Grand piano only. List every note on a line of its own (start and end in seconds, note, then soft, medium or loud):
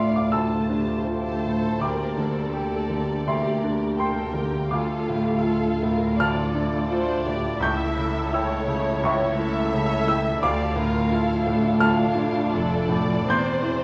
0.00 0.29 D2 soft
0.00 1.46 A2 soft
0.00 0.18 F4 soft
0.00 1.84 A#4 soft
0.00 1.83 D5 soft
0.00 0.14 E5 soft
0.00 1.83 G5 medium
0.00 0.33 A5 soft
0.00 0.13 C6 medium
0.16 0.33 F5 soft
0.16 0.32 D6 medium
0.32 1.77 D2 soft
0.32 1.78 A5 medium
0.32 1.77 E6 medium
0.69 1.30 D4 soft
1.07 1.67 F4 soft
1.46 1.82 A2 soft
1.81 3.22 D2 medium
1.81 3.23 G5 soft
1.81 3.22 D6 medium
2.17 2.76 D3 soft
2.54 3.12 G4 soft
2.89 3.48 D3 soft
3.27 4.67 D2 medium
3.27 3.95 E5 medium
3.27 3.95 C6 medium
3.64 4.21 D4 soft
3.99 4.57 G4 soft
3.99 4.68 G5 soft
3.99 4.68 C6 medium
4.34 4.71 D3 soft
4.71 6.14 D2 medium
4.71 6.15 F5 soft
4.71 6.14 D6 medium
5.09 5.67 A2 soft
5.44 6.03 F4 soft
5.83 6.40 A2 soft
6.19 7.58 D2 medium
6.19 7.58 A5 medium
6.19 7.58 F6 medium
6.55 7.11 D4 soft
6.90 7.47 F4 soft
7.26 7.61 A2 soft
7.60 8.99 C#2 medium
7.60 8.30 C#6 medium
7.60 8.29 G6 medium
7.96 8.53 C#3 soft
8.32 8.89 E4 medium
8.32 9.00 G5 medium
8.32 9.00 E6 medium
8.67 9.24 C#3 medium
9.03 10.38 C#2 medium
9.03 9.70 E5 medium
9.03 9.70 C#6 medium
9.39 9.94 E4 medium
9.74 10.29 C#3 medium
10.08 10.42 E4 medium
10.08 10.41 G5 medium
10.08 10.40 E6 medium
10.43 11.77 D2 medium
10.43 11.77 F5 medium
10.43 11.77 D6 medium
10.76 11.31 A2 medium
11.10 11.66 F4 medium
11.47 12.03 A2 medium
11.80 13.23 D2 medium
11.80 13.23 A5 medium
11.80 13.23 F6 medium
12.15 12.75 D4 medium
12.54 13.13 F4 medium
12.89 13.26 A2 medium
13.28 13.84 E2 medium
13.28 13.84 C6 medium
13.28 13.84 G6 medium
13.62 13.84 E3 medium